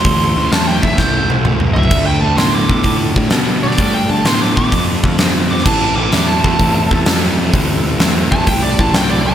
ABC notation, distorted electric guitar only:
X:1
M:4/4
L:1/8
Q:"Swing" 1/4=128
K:Am
V:1 name="Distorted electric guitar" clef=bass
[A,,E,] [A,,E,] [A,,^F,] [A,,F,] [A,,E,] [A,,E,] [A,,F,] [A,,F,] | [D,A,] [D,A,] [D,B,] [D,B,] [D,A,] [D,A,] [D,B,] [D,B,] | [D,A,] [D,A,] [D,B,] [D,B,] [D,A,] [D,A,] [D,B,] [D,B,] | [A,,E,] [A,,E,] [A,,^F,] [A,,F,] [A,,E,] [A,,E,] [A,,F,] [A,,F,] |
[A,,E,] [A,,E,] [A,,^F,] [A,,F,] [A,,E,] [A,,E,] [A,,F,] [A,,F,] |]